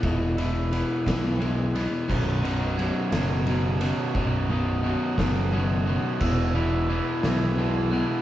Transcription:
<<
  \new Staff \with { instrumentName = "Glockenspiel" } { \time 6/8 \key b \major \tempo 4. = 58 fis'''8 e'''8 fis'''4 gis'''8 fis'''8 | fis'''4 gis'''8 gis'''4 fis'''8~ | fis'''8 dis'''8 fis'''4 gis'''8 fis'''8 | e'''4 gis'''8 gis'''4 fis'''8 | }
  \new Staff \with { instrumentName = "Clean electric guitar" } { \clef bass \time 6/8 \key b \major <e, e gis b>8 e'8 b8 e8 gis8 b8 | b,,8 dis'8 fis8 fis,8 b,8 fis8 | b,,8 dis'8 fis8 fis,8 b,8 fis8 | e,8 e'8 b8 e8 gis8 b8 | }
  \new Staff \with { instrumentName = "Overdriven electric guitar" } { \clef bass \time 6/8 \key b \major <e, b, e>8 <e, b, e>8 <e, b, e>8 <e, b, e>8 <e, b, e>8 <e, b, e>8 | <b,, fis, b,>8 <b,, fis, b,>8 <b,, fis, b,>8 <b,, fis, b,>8 <b,, fis, b,>8 <b,, fis, b,>8 | <b,, fis, b,>8 <b,, fis, b,>8 <b,, fis, b,>8 <b,, fis, b,>8 <b,, fis, b,>8 <b,, fis, b,>8 | <e, b, e>8 <e, b, e>8 <e, b, e>8 <e, b, e>8 <e, b, e>8 <e, b, e>8 | }
  \new Staff \with { instrumentName = "Overdriven electric guitar" } { \clef bass \time 6/8 \key b \major r2. | <b,, fis, b,>8 <b,, fis, b,>8 <b,, fis, b,>8 <b,, fis, b,>8 <b,, fis, b,>8 <b,, fis, b,>8 | <b,, fis, b,>8 <b,, fis, b,>8 <b,, fis, b,>8 <b,, fis, b,>8 <b,, fis, b,>8 <b,, fis, b,>8 | <e, b, e>8 <e, b, e>8 <e, b, e>8 <e, b, e>8 <e, b, e>8 <e, b, e>8 | }
  \new Staff \with { instrumentName = "Fingered electric bass" } { \clef bass \time 6/8 \key b \major e,,4. b,,4. | b,,,4. fis,,4. | b,,,4. fis,,4. | e,,4. b,,4. | }
  \new DrumStaff \with { instrumentName = "Drums" } \drummode { \time 6/8 <bd cymr>8 cymr8 cymr8 <bd cymr sn>8 cymr8 cymr8 | <cymc bd>8 cymr8 cymr8 <cymr sn>8 cymr8 cymr8 | bd4. <bd sn>4. | <cymc bd>4. sn4. | }
>>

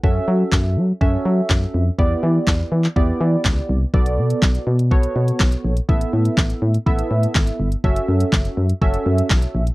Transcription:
<<
  \new Staff \with { instrumentName = "Synth keys" } { \time 4/4 \key fis \phrygian \tempo 4 = 123 <cis' fis' a' e''>4. r8 <cis' fis' a' e''>4. r8 | <b e' g' d''>4. r8 <b e' g' d''>4. r8 | <b fis' a' d''>4. r8 <b fis' a' cis''>4. r8 | <b e' a' e''>4. r8 <b e' a' e''>4. r8 |
<cis' fis' a' e''>4. r8 <cis' fis' a' e''>4. r8 | }
  \new Staff \with { instrumentName = "FM bass" } { \clef bass \time 4/4 \key fis \phrygian fis,8 fis8 fis,8 fis8 fis,8 fis8 fis,8 eis,8 | e,8 e8 e,8 e8 e,8 e8 cis,8 c,8 | b,,8 b,8 b,,8 b,8 b,,8 b,8 b,,8 ais,,8 | a,,8 a,8 a,,8 a,8 a,,8 a,8 gis,,8 g,,8 |
fis,,8 fis,8 fis,,8 fis,8 fis,,8 fis,8 b,,8 ais,,8 | }
  \new DrumStaff \with { instrumentName = "Drums" } \drummode { \time 4/4 bd4 <hc bd sn>4 bd4 <hc bd sn>4 | bd4 <hc bd sn>8. hc16 bd4 <hc bd sn>4 | bd16 hh8 hh16 <hc bd sn>16 hh8 hh16 bd16 hh8 hh16 <hc bd sn>16 hh8 hh16 | bd16 hh8 hh16 <hc bd sn>16 hh8 hh16 bd16 hh8 hh16 <hc bd sn>16 hh8 hh16 |
bd16 hh8 hh16 <hc bd sn>16 hh8 hh16 bd16 hh8 hh16 <hc bd sn>16 hh8 hh16 | }
>>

